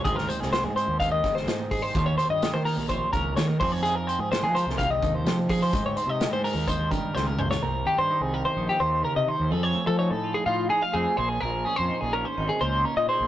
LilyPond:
<<
  \new Staff \with { instrumentName = "Clean electric guitar" } { \time 4/4 \key aes \major \tempo 4 = 127 aes'16 bes'16 c''16 aes'16 c''16 aes'16 c''8 f''16 ees''8 c''8 r16 aes'16 c''16~ | c''16 des''16 c''16 ees''8 c''16 bes'8 c''8 bes'8 des''16 bes'16 c''16 des''16 | aes'16 bes'16 c''16 aes'16 c''16 aes'16 c''8 f''16 ees''8 c''8 r16 aes'16 c''16~ | c''16 des''16 c''16 ees''8 c''16 bes'8 c''8 bes'8 c''16 bes'16 c''16 des''16 |
bes'8 g'16 c''8 aes'16 bes'16 c''8 g'16 c''8 bes'16 ees''16 c''8 | a'16 cis''8 a'16 cis''16 a'8 gis'16 f'8 gis'16 f''16 gis'8 c''16 aes'16 | bes'8 aes'16 c''8 aes'16 bes'16 c''8 aes'16 c''8 bes'16 ees''16 c''8 | }
  \new Staff \with { instrumentName = "Clean electric guitar" } { \time 4/4 \key aes \major << { <ees' g' c''>4 g'4 ees''8 g'8 ees'8 g'8 | <f' g' des''>4 g'4 des''4. <ees' g' aes'>8~ | <ees' g' aes'>8 g'4 bes'8 g'8 ees'8 g'8 <ees' g' aes'>8 | <ees' g' c''>4 g'4 ees''8 g'4. |
bes'4 ees'8 g'8 ees'8 g'4. | gis'4 ees'8 f'8 ees'8 ees'16 f'8. aes'8~ | aes'8 des'8 ees'8 des'8 ees'4 des'8 aes'8 | } \\ { aes,4. c'4 aes,4. | ees4. bes4 des8 ees8 f8~ | f4 aes4 c4. f8 | aes,4. aes4 ees8 aes,8 bes,8 |
c8 ees2~ ees8 des8 ees8 | f8 a2~ a8 a8 bes,8 | bes2~ bes8 bes4 bes,8 | } >> }
  \new Staff \with { instrumentName = "Fingered electric bass" } { \clef bass \time 4/4 \key aes \major aes,,8 r16 c,8 aes,8 ees,8. g,,8 aes,4 | ees,8 r16 g,8 ees8 bes,,8. des,8 ees8 f,8~ | f,8. aes,8 f8 c,8. ees,8 f4 | aes,8 r16 c8 aes,8 ees,8. g,8 des,4 |
c,8 r16 g,16 r16 c,8 r16 bes,,16 r16 ees,8 r16 c16 r16 ees,16 | f,8 r16 f8 a,8 r16 a,8 r8 f,16 r16 bes,,8 | bes,,8 r16 f,16 r16 bes,,8 r16 aes,,16 r16 des,8 r16 bes,16 r16 bes,,16 | }
  \new DrumStaff \with { instrumentName = "Drums" } \drummode { \time 4/4 <hh bd>16 sn16 hh16 sn16 <hh sn>8 hh8 <hh bd>8 <hh bd sn>16 sn16 <hh sn>8 <hho bd>8 | <hh bd>8 hh8 <hh sn>8 hho8 <hh bd>8 <hh bd>8 <hh sn>8 <hho bd>8 | hh8 hh8 <hh sn>8 hh16 sn16 <hh bd>8 <hh bd>8 <hh sn>8 <hho bd>8 | <hh bd>8 hh8 <hh sn>8 hho8 <hh bd>8 <hh bd>8 sn8 toml16 sn16 |
r4 r4 r4 r4 | r4 r4 r4 r4 | r4 r4 r4 r4 | }
>>